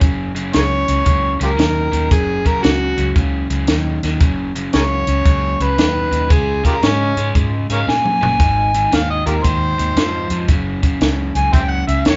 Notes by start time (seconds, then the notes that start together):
Already playing: C#4
0.00 F#1 F#2 C#3, kick, closed hi-hat
0.35 F#2 C#3, closed hi-hat
0.53 C#2 F#2 C#3 G#4 A#4 C#5, snare, closed hi-hat
0.88 C#2 F#2 C#3, closed hi-hat
1.04 C#2 F#2 C#3, kick, closed hi-hat
1.39 C#2 F#2 C#3 F4 G4 A#4, closed hi-hat
1.57 D#2 F#2 D#3, snare, closed hi-hat
1.92 D#2 F#2 D#3, closed hi-hat
2.11 F#1 F#2 C#3 G#4, kick, closed hi-hat
2.45 F#2 C#3 A#4, kick, closed hi-hat
2.63 C#2 F#2 C#3 F#4, snare, closed hi-hat
2.97 C#2 F#2 C#3, closed hi-hat
3.16 C#2 F#2 C#3, kick, closed hi-hat
3.49 C#2 F#2 C#3, closed hi-hat
3.67 D#2 F#2 D#3, snare, closed hi-hat
4.03 D#2 F#2 D#3, snare, closed hi-hat
4.20 F#1 F#2 C#3, kick, closed hi-hat
4.55 F#2 C#3, closed hi-hat
4.73 C#2 F#2 C#3 G#4 A#4 C#5, snare, closed hi-hat
5.07 C#2 F#2 C#3, closed hi-hat
5.25 C#2 F#2 C#3, kick, closed hi-hat
5.60 C#2 F#2 C#3 B4, closed hi-hat
5.77 D#2 F#2 D#3, snare, closed hi-hat
6.11 D#2 F#2 D#3, closed hi-hat
6.29 C#2 C#3 G#3 G#4, kick, closed hi-hat
6.63 C#3 G#3 F4 G4 A#4, kick, closed hi-hat
6.82 G#2 C#3 G#3 C#4, snare, closed hi-hat
7.17 G#2 C#3 G#3, closed hi-hat
7.35 G#2 C#3 G#3, kick, closed hi-hat
7.70 G#2 C#3 G#3 A#4 C#5 F5, closed hi-hat
7.87 A#2 C#3 A#3 G#5, snare
8.05 mid tom
8.21 F#1 C#3 A#3, floor tom
8.39 G#1 G#2 D#3, kick, closed hi-hat
8.74 G#2 D#3, closed hi-hat
8.91 D#2 G#2 D#3 F5, snare, closed hi-hat
9.10 D#5
9.26 D#2 G#2 D#3 F4 G4 A#4, closed hi-hat
9.44 D#2 G#2 D#3 C5, kick, closed hi-hat
9.78 D#2 G#2 D#3, closed hi-hat
9.96 F2 G#2 F3, snare, closed hi-hat
10.30 F2 G#2 F3, closed hi-hat
10.48 F#1 F#2 C#3, kick, closed hi-hat
10.82 F#2 C#3, kick, closed hi-hat
11.01 C#2 F#2 C#3, snare, closed hi-hat
11.35 C#2 F#2 C#3 G#5, closed hi-hat
11.52 C#2 F#2 C#3 C5 E5 G5, kick, closed hi-hat
11.70 F#5
11.87 C#2 F#2 C#3 E5, closed hi-hat
12.05 D#2 F#2 D#3 C#5, snare, closed hi-hat